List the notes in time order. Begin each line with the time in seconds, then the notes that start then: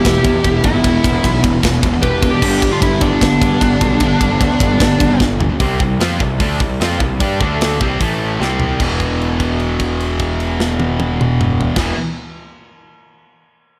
Already playing: E2 B2 E3 E4 G4
0.05 E1 E2 B2, kick, snare, ride
0.24 E2 B2, kick, ride
0.36 E2 B2
0.44 E1 E2 B2, kick, ride
0.64 G1 E2 B2 B3 E4, kick, ride
0.75 E2 B2
0.84 E1 E2 B2, kick, ride
0.88 E3
1.04 E1 E2 B2, kick, ride
1.14 E2 B2
1.24 B1 E2 B2, kick, ride
1.43 E1 E2 B2, kick, ride
1.53 E2 B2
1.63 E1 E2 B2, kick, snare, ride
1.83 E1 E2 B2, kick, ride
1.93 E2 B2
2.02 E1 E2 B2 G4 B4, kick, ride
2.22 E2 B2, kick, ride
2.31 E2 B2 D4 G4
2.42 G1 G2 D3 G3, kick, crash
2.47 G3
2.62 G2 D3, kick, ride
2.72 G2 D3 D4 F4
2.81 G1 G2 D3 B3 E4, kick, ride
3.01 G1 G2 D3 B3 D4, kick, ride
3.13 G2 D3
3.21 G1 G2 D3, kick, snare, ride
3.41 G2 D3, kick, ride
3.53 G2 D3
3.61 G1 G2 D3, kick, ride
3.81 B1 G2 D3, kick, ride
3.94 G2 D3
4.00 G1 G2 D3, kick, ride
4.04 G3
4.21 G1 G2 D3, kick, ride
4.32 G2 D3
4.41 D2 G2 D3, kick, ride
4.59 G1 G2 D3, kick, ride
4.63 G2 D3
4.68 G2 D3
4.73 G2 D3
4.78 G1 G2 D3, kick, snare, ride
4.82 G2 D3
5.00 G1 G2 D3, kick, ride
5.11 G2 D3
5.20 G1 G2 D3, kick, snare
5.41 G2 D3, floor tom
5.52 G2 D3
5.60 C2 C3 G3 C4, kick, open hi-hat
5.80 C2 C3 G3, kick
5.99 F2 F3 C4 F4, snare, open hi-hat
6.19 C2 C3 G3, kick
6.40 D2 D3 A3 D4, kick, open hi-hat
6.60 C2 C3 G3, kick
6.81 F2 F3 C4 F4, snare, open hi-hat
7.00 C2 C3 G3, kick
7.20 G2 G3 D4 G4, kick, open hi-hat
7.41 D2 D3 A3 D4, kick
7.61 snare, open hi-hat
7.81 C2 C3 G3 C4, kick
8.00 A1 A2 E3 A3, kick, open hi-hat
8.40 C2 C3 G3 C4, snare
8.60 floor tom
8.79 E1 E2 B2 E3, kick, crash
9.00 kick, crash
9.22 crash
9.40 kick, crash
9.60 crash
9.80 kick, crash
10.00 crash
10.19 kick, crash
10.40 crash
10.60 snare
10.80 high tom
11.00 high tom
11.21 mid tom
11.41 mid tom
11.61 floor tom
11.76 E1 E2 B2, kick, snare, crash
11.80 E3